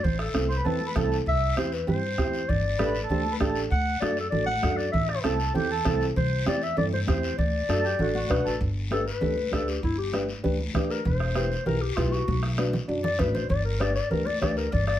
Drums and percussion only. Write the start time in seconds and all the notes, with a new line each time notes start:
0.04 bombo low, low conga, long guiro
0.19 bombo rim
0.35 bombo rim, high conga, short guiro
0.51 short guiro
0.65 low conga, long guiro
0.81 high conga
0.96 bombo low, bombo rim, high conga, low conga, short guiro
1.12 short guiro
1.26 bombo low, long guiro
1.57 bombo rim, high conga, short guiro
1.72 short guiro
1.87 low conga, long guiro
2.18 bombo low, bombo rim, high conga, short guiro
2.33 short guiro
2.49 bombo low, low conga, long guiro
2.79 bombo rim, high conga, short guiro
2.95 short guiro
3.10 low conga, long guiro
3.26 high conga
3.40 bombo low, bombo rim, high conga, short guiro
3.56 short guiro
3.70 bombo low, long guiro
4.01 bombo rim, high conga, short guiro
4.17 short guiro
4.32 low conga, long guiro
4.47 high conga
4.63 bombo low, bombo rim, high conga, short guiro
4.79 short guiro
4.94 bombo low, low conga, long guiro
5.09 bombo rim
5.24 bombo rim, high conga, short guiro
5.40 short guiro
5.55 low conga, long guiro
5.85 bombo low, bombo rim, high conga, low conga, short guiro
6.01 short guiro
6.16 bombo low, low conga, long guiro
6.46 bombo rim, high conga, short guiro
6.62 short guiro
6.77 low conga, long guiro
6.93 high conga
7.08 bombo low, bombo rim, high conga, low conga, short guiro
7.23 short guiro
7.38 bombo low, low conga, long guiro
7.69 bombo rim, high conga, short guiro
7.85 short guiro
7.99 low conga, long guiro
8.15 high conga
8.30 bombo low, bombo rim, high conga, short guiro
8.47 short guiro
8.61 bombo low, long guiro
8.91 bombo rim, high conga, short guiro
9.08 short guiro
9.21 low conga, long guiro
9.36 high conga
9.51 bombo low, bombo rim, high conga, short guiro
9.68 short guiro
9.83 bombo low, long guiro
10.13 bombo rim, high conga, short guiro
10.29 short guiro
10.44 low conga, long guiro
10.59 high conga
10.74 bombo low, bombo rim, high conga, low conga, short guiro
10.90 short guiro
11.05 bombo low, low conga, long guiro
11.20 bombo rim
11.35 bombo rim, high conga, short guiro
11.52 short guiro
11.66 low conga, long guiro
11.97 bombo low, bombo rim, high conga, short guiro
12.12 short guiro
12.28 bombo low, high conga, long guiro
12.43 bombo rim
12.58 bombo rim, high conga, short guiro
12.73 low conga, short guiro
12.89 long guiro
13.04 low conga
13.19 bombo low, bombo rim, low conga, short guiro
13.35 low conga, short guiro
13.49 bombo low, low conga, long guiro
13.80 bombo rim, high conga, short guiro
13.96 short guiro
14.11 low conga, long guiro
14.26 high conga
14.42 bombo low, bombo rim, high conga, low conga, short guiro
14.57 short guiro
14.72 bombo low, low conga, long guiro
14.87 bombo rim